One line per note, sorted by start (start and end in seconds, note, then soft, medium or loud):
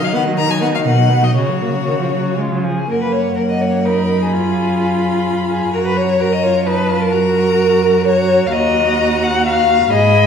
0.00 0.87 D#3 soft
0.00 0.15 F#3 soft
0.00 1.39 D#4 soft
0.00 0.14 F5 medium
0.14 0.27 B3 soft
0.14 0.23 F#5 medium
0.26 0.40 F#3 soft
0.38 0.51 D#3 soft
0.38 0.52 A#5 medium
0.49 0.63 F#3 soft
0.49 0.61 G#5 soft
0.61 0.75 B3 soft
0.61 0.67 F#5 medium
0.74 0.84 F#3 soft
0.74 0.79 F5 soft
0.85 1.36 B2 soft
0.85 0.99 D#3 soft
0.85 1.25 F#5 medium
0.98 1.11 F#3 soft
1.10 1.24 B3 soft
1.23 1.36 F#3 soft
1.23 1.36 D#5 soft
1.36 2.67 C#3 soft
1.36 1.51 C#3 soft
1.36 2.38 F#4 soft
1.36 2.37 C#5 soft
1.49 1.63 F#3 soft
1.62 1.76 A#3 soft
1.74 1.87 F#3 soft
1.87 1.93 D#3 soft
2.00 2.12 F3 soft
2.12 2.37 F#3 soft
2.38 2.51 G#3 soft
2.38 2.64 F4 soft
2.51 2.66 F#3 soft
2.64 2.88 F3 soft
2.64 2.89 G#4 soft
2.89 5.69 F#2 soft
2.89 3.34 A#3 soft
2.89 2.96 A#4 soft
2.89 3.35 F#5 soft
3.02 3.14 B4 soft
3.12 3.35 C#5 soft
3.36 3.87 A#3 soft
3.36 3.41 A#4 soft
3.36 3.87 F#5 soft
3.50 3.63 D#5 soft
3.62 3.87 C#5 soft
3.85 4.34 D#4 soft
3.85 4.24 A#4 soft
3.85 4.32 B5 soft
4.22 5.27 G#4 soft
4.32 5.73 F4 soft
4.32 5.75 B5 soft
5.51 5.72 G#4 soft
5.73 8.49 F#2 soft
5.73 6.19 F#4 soft
5.73 5.78 A#4 medium
5.73 6.18 A#5 soft
5.86 5.98 B4 soft
5.97 6.22 C#5 medium
6.18 6.28 F#4 soft
6.18 6.34 A#4 medium
6.18 6.65 A#5 soft
6.32 6.45 D#5 medium
6.42 6.68 F4 soft
6.42 6.68 C#5 medium
6.66 6.91 D#4 soft
6.66 7.02 B4 medium
6.66 7.13 A5 soft
6.90 7.14 F4 soft
7.01 8.07 A#4 medium
7.12 8.05 F#4 soft
7.12 8.05 A#5 soft
8.05 8.52 F#4 soft
8.05 8.48 C#5 medium
8.05 8.52 A#5 soft
8.47 8.53 F5 medium
8.52 9.90 D#2 medium
8.52 9.90 F#4 medium
8.52 9.25 D#5 medium
8.52 9.90 A#5 soft
9.23 9.46 F#5 medium
9.47 9.92 F5 medium
9.93 10.27 G#2 medium
9.93 10.27 G#4 soft
9.93 10.27 D#5 medium
9.93 10.27 B5 medium